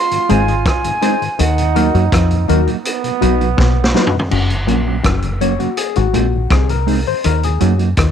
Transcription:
Already playing: trombone F4, flute C6
0.11 tonewheel organ G#2 D#3, closed hi-hat
0.29 fingered electric bass G#1, clav G#2, clean electric guitar G#3 C4 D#4 G#4, tonewheel organ G#3 C4 D#4, synth stab D#4 G#4 C5, flute G#5, closed hi-hat
0.48 tonewheel organ G#2 D#3, synth stab G#4 C5, closed hi-hat
0.66 flute G#5, kick, cross-stick, closed hi-hat
0.84 tonewheel organ G#2 D#3, closed hi-hat
1.01 tonewheel organ G#3 C4 D#4, clean electric guitar G#3 C4 D#4 G#4, synth stab D#4 G#4 C5, closed hi-hat
1.21 tonewheel organ G#2 D#3, closed hi-hat
1.39 fingered electric bass D#2, clav D#3, trombone D#4, flute F#5, closed hi-hat
1.58 tonewheel organ D#2 A#2, closed hi-hat
1.75 clean electric guitar F#3 A#3 D#4 F#4, tonewheel organ F#3 A#3 D#4, synth stab D#4 F#4 A#4, closed hi-hat
1.94 fingered electric bass F#2, clav F#3, clean electric guitar F#3 A#3 D#4 F#4, closed hi-hat
2.12 fingered electric bass F2, clav F3, kick, cross-stick, closed hi-hat
2.31 tonewheel organ D#2 A#2, closed hi-hat
2.48 fingered electric bass D#2, clav D#3, tonewheel organ F#3 A#3 D#4, clean electric guitar F#3 A#3 D#4 F#4, synth stab D#4 F#4 A#4, closed hi-hat
2.67 tonewheel organ D#2 A#2, clean electric guitar F#3 A#3 D#4 F#4, closed hi-hat
2.85 trombone B3, closed hi-hat
3.04 tonewheel organ B2, closed hi-hat
3.21 fingered electric bass B1, clav B2, tonewheel organ F#3 B3 D#4, clean electric guitar F#3 B3 D#4 F#4, synth stab D#4 F#4 B4, closed hi-hat
3.39 tonewheel organ B2, clean electric guitar F#3 B3 D#4 F#4, synth stab F#4 B4, closed hi-hat
3.57 fingered electric bass B1, clav B2, kick, snare
3.76 tonewheel organ B2
3.84 snare
3.94 tonewheel organ F#3 B3 D#4, clean electric guitar F#3 B3 D#4 F#4, synth stab D#4 F#4 B4, snare
4.07 floor tom
4.12 tonewheel organ B2
4.19 floor tom
4.31 fingered electric bass F#1, clav F#2, crash
4.49 tonewheel organ F#2 C#3, closed hi-hat
4.67 fingered electric bass A#1, clav A#2, clean electric guitar F#3 A#3 C#4 F#4, tonewheel organ F#3 A#3 C#4, closed hi-hat
4.87 clean electric guitar F#3 A#3 C#4 F#4
5.04 fingered electric bass F#1, clav F#2, kick, cross-stick, closed hi-hat
5.22 tonewheel organ F#2 C#3, closed hi-hat
5.41 clean electric guitar F#3 A#3 C#4 F#4, tonewheel organ F#3 A#3 C#4, synth stab C#5, closed hi-hat
5.59 tonewheel organ F#2 C#3, clean electric guitar F#3 A#3 C#4 F#4, synth stab F#4, closed hi-hat
5.77 synth stab G#4, closed hi-hat
5.96 fingered electric bass G#1, clav G#2, tonewheel organ G#2 D#3, synth stab F#4, closed hi-hat
6.13 fingered electric bass A#1, clav A#2, clean electric guitar G#3 C4 D#4 G#4, tonewheel organ G#3 C4 D#4, closed hi-hat
6.33 tonewheel organ G#2 D#3
6.51 fingered electric bass C2, clav C3, synth stab G#4, kick, cross-stick, closed hi-hat
6.69 tonewheel organ G#2 D#3, synth stab A#4, closed hi-hat
6.86 clean electric guitar G#3 C4 D#4 G#4, tonewheel organ G#3 C4 D#4, open hi-hat
7.06 tonewheel organ G#2 D#3, synth stab C5
7.24 fingered electric bass D#2, clav D#3, synth stab A#4, closed hi-hat
7.43 tonewheel organ D#2 A#2, synth stab G#4, closed hi-hat
7.60 fingered electric bass F#2, clean electric guitar F#3 A#3 D#4 F#4, tonewheel organ F#3 A#3 D#4, clav F#3, closed hi-hat
7.78 clean electric guitar F#3 A#3 D#4 F#4, closed hi-hat
7.97 fingered electric bass D#2, clav D#3, kick, cross-stick, closed hi-hat

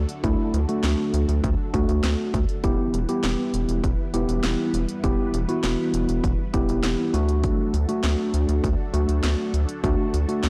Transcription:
Already playing: string machine D3 D4 F#4 A4
0.09 closed hi-hat
0.24 analog synth bass D2, tine electric piano A3 D4 E4, kick, closed hi-hat
0.54 analog synth bass D2, closed hi-hat
0.69 tine electric piano A3 D4 F#4, closed hi-hat
0.84 analog synth bass D2, snare, closed hi-hat
1.14 analog synth bass D2, closed hi-hat
1.29 analog synth bass D2, closed hi-hat
1.44 analog synth bass D2, kick, closed hi-hat
1.74 analog synth bass D2, tine electric piano A3 D4 F#4, kick, closed hi-hat
1.89 analog synth bass D2, closed hi-hat
2.04 analog synth bass D2, snare, closed hi-hat
2.34 analog synth bass D2, kick, closed hi-hat
2.49 closed hi-hat
2.64 analog synth bass E1, string machine E3 G3 E4 B4, tine electric piano B3 E4 G4, kick, closed hi-hat
2.94 analog synth bass E1, closed hi-hat
3.09 tine electric piano B3 E4 G4, closed hi-hat
3.24 analog synth bass E1, snare, closed hi-hat
3.54 analog synth bass E1, closed hi-hat
3.69 analog synth bass E1, closed hi-hat
3.84 analog synth bass E1, kick, closed hi-hat
4.14 analog synth bass E1, tine electric piano B3 E4 G4, closed hi-hat
4.29 analog synth bass E1, closed hi-hat
4.44 analog synth bass E1, snare, closed hi-hat
4.74 analog synth bass E1, closed hi-hat
4.89 closed hi-hat
5.04 analog synth bass E1, tine electric piano B3 E4 G4, kick, closed hi-hat
5.34 analog synth bass E1, closed hi-hat
5.49 tine electric piano B3 E4 F#4, closed hi-hat
5.64 analog synth bass E1, snare, closed hi-hat
5.94 analog synth bass E1, closed hi-hat
6.09 analog synth bass E1, closed hi-hat
6.24 analog synth bass E1, kick, closed hi-hat
6.53 analog synth bass E1, tine electric piano B3 E4 G4, kick, closed hi-hat
6.69 analog synth bass E1, closed hi-hat
6.84 analog synth bass E1, snare, closed hi-hat
7.14 analog synth bass D2, string machine D3 D4 F#4 A4, tine electric piano A3 D4 F#4, closed hi-hat
7.29 closed hi-hat
7.44 kick, closed hi-hat
7.74 analog synth bass D2, closed hi-hat
7.89 tine electric piano A3 D4 F#4, closed hi-hat
8.04 analog synth bass D2, snare, closed hi-hat
8.34 analog synth bass D2, closed hi-hat
8.49 analog synth bass D2, closed hi-hat
8.64 analog synth bass D2, kick, closed hi-hat
8.94 analog synth bass D2, tine electric piano A3 D4 F#4, closed hi-hat
9.09 analog synth bass D2, closed hi-hat
9.24 analog synth bass D2, snare, closed hi-hat
9.54 analog synth bass D2, closed hi-hat
9.69 closed hi-hat
9.84 analog synth bass D2, tine electric piano A3 D4 F#4, kick, closed hi-hat
10.14 analog synth bass D2, closed hi-hat
10.29 tine electric piano A3 D4 F#4, closed hi-hat
10.44 analog synth bass D2, snare, closed hi-hat

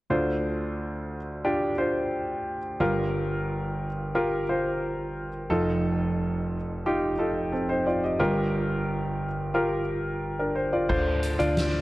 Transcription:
0.10 grand piano D2 D3 D4 F4 C5
1.45 grand piano D4 F4 G4
1.78 grand piano D4 F4 C5
2.80 grand piano G1 G2 F4 G4 A#4
4.15 grand piano F4 G4 A#4
4.49 grand piano F4 G4 C5
5.50 grand piano F1 F2 D#4 F4 A4
6.86 grand piano D#4 F4 G4
7.18 grand piano D#4 F4 A4
7.52 grand piano C4 A4
7.69 grand piano D#4 C5
7.86 grand piano F4 D5
8.04 grand piano G4 D#5
8.19 grand piano G1 G2 F4 G4 A#4
9.54 grand piano F4 G4 A#4
10.39 grand piano D4 A#4
10.56 grand piano C5
10.73 grand piano F4 D5
10.89 fingered electric bass D2, grand piano D3 D4 F4 C5, kick, crash
11.23 closed hi-hat
11.39 fingered electric bass D2, grand piano D4 F4 D5, closed hi-hat
11.57 snare, closed hi-hat

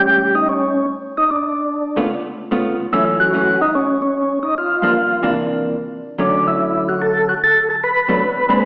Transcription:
Already playing: hollow-body jazz guitar A2 G3 C#4, tonewheel organ G4
0.35 tonewheel organ D#4
0.49 tonewheel organ C#4
1.17 tonewheel organ D#4
1.31 tonewheel organ D4
1.96 hollow-body jazz guitar C#3 A3 B3 F4
2.51 hollow-body jazz guitar C#3 A3 B3 F4
2.92 hollow-body jazz guitar F#2 E3 A3 C#4, tonewheel organ E4
3.20 tonewheel organ F#4
3.33 hollow-body jazz guitar F#2 E3 A3 C#4
3.61 tonewheel organ D#4
3.75 tonewheel organ C#4
4.02 tonewheel organ C#4
4.43 tonewheel organ D#4
4.58 tonewheel organ F4
4.82 hollow-body jazz guitar G2 F3 A#3 D4, tonewheel organ F4
5.23 hollow-body jazz guitar C3 E3 A#3 D4
6.18 hollow-body jazz guitar D3 F#3 A3 C#4, tonewheel organ D4
6.48 tonewheel organ E4
6.89 tonewheel organ F#4
7.02 tonewheel organ A4
7.29 tonewheel organ F#4
7.44 tonewheel organ A4
7.70 tonewheel organ A4
7.84 tonewheel organ B4
8.08 hollow-body jazz guitar B2 F#3 A3 D4
8.49 hollow-body jazz guitar A#2 G#3 C4 D4

